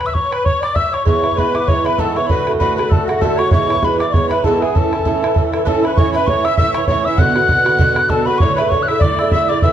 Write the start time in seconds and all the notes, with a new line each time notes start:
0.01 bodhran
0.06 E5 E6, bodhran
0.14 C#5 C#6, bodhran
0.31 B4 B5, bodhran
0.45 C#5 C#6, bodhran
0.61 D5 D6, bodhran
0.75 E5 E6, bodhran
0.92 C#5 C#6, bodhran
1.04 G#2 E3 B3 E4 C#5 C#6, bodhran
1.23 E3 B3 E4, bodhran
1.31 bodhran
1.36 G#2 E3 B3 E4 B4 B5, bodhran
1.54 E3 B3 E4 D6, bodhran
1.67 G#2 E3 B3 E4 C#5 C#6, bodhran
1.85 E3 B3 E4 B4 B5, bodhran
1.98 G#2 E3 B3 E4 A4 A5, bodhran
2.16 E3 B3 E4 C#5 C#6, bodhran
2.27 A2 D3 A3 B4 B5, bodhran
2.31 F#4
2.47 D3 A3 F#4, bodhran
2.55 B4, bodhran
2.60 A2 D3 A3 F#4 B5, bodhran
2.76 F#4 B4 B5, bodhran
2.80 D3 A3
2.88 A2 D3 A3 A4, bodhran
2.92 F#4 A5
3.05 F#4 F#5
3.09 D3 A3, bodhran
3.19 A2 D3 A4 A5, bodhran
3.23 A3 F#4
3.36 F#4 C#5 C#6, bodhran
3.42 D3 A3
3.51 G#2 E3 B3 E4 C#5 C#6, bodhran
3.69 E3 B3 E4, bodhran
3.77 bodhran
3.82 G#2 E3 B3 E4 B4 B5, bodhran
3.99 E3 B3 E4 D5 D6, bodhran
4.08 D5
4.13 G#2 E3 B3 E4 C#5 C#6, bodhran
4.29 B3 E4 B4 B5, bodhran
4.35 E3
4.44 G#2 E3 B3 E4 A4 A5, bodhran
4.61 B3 E4 G#4 G#5, bodhran
4.65 E3
4.75 A2 E3 C#4 E4 A4 A5, bodhran
4.92 E3 C#4 E4, bodhran
4.99 bodhran
5.05 A2 E3 C#4 E4, bodhran
5.22 E3 C#4 E4, bodhran
5.34 A2 E3 C#4 E4, bodhran
5.52 E3 C#4 E4, bodhran
5.65 A2 E3 C#4 E4 A4 B4 A5, bodhran
5.83 E3 C#4 E4 B4 B5, bodhran
5.96 A2 E3 C#4 E4 C#5 C#6, bodhran
6.13 C#4 E4 B4 B5, bodhran
6.18 E3
6.27 A2 E3 C#4 E4 C#5 C#6, bodhran
6.43 E3 C#4 E4 E5 E6, bodhran
6.57 A2 E3 C#4 E4 E5 E6, bodhran
6.74 E3 C#4 E4 C#5 C#6, bodhran
6.87 A2 E3 C#4 E4 C#5 C#6, bodhran
7.04 E3 C#4 E4 E5 E6
7.16 B2 D3 B3 F#5 F#6, bodhran
7.20 F#4
7.36 D3 B3 F#4, bodhran
7.48 B2 D3 B3 F#4, bodhran
7.65 D3 B3 F#4, bodhran
7.78 B2 D3 B3 F#4, bodhran
7.95 D3 B3 F#4, bodhran
8.09 B2 D3 B3 F#4 A4 A5, bodhran
8.26 B3 F#4 B4 B5
8.30 D3
8.38 A2 D3 C#5 C#6, bodhran
8.43 A3 E4
8.55 E4 B4 B5, bodhran
8.61 D3 A3
8.69 A2 D3 C#5 C#6, bodhran
8.74 A3 E4
8.83 E5 F#6
8.88 A3 E4 E6, bodhran
8.92 D3
8.99 A2 D5 D6, bodhran
9.03 D3 A3 E4
9.19 A3 E4 E6, bodhran
9.23 D3
9.32 A2 D3 A3 E4 E5 E6, bodhran
9.49 A3 E4 D5 D6
9.53 D3
9.62 A2 E3 B3 E4 E5 E6, bodhran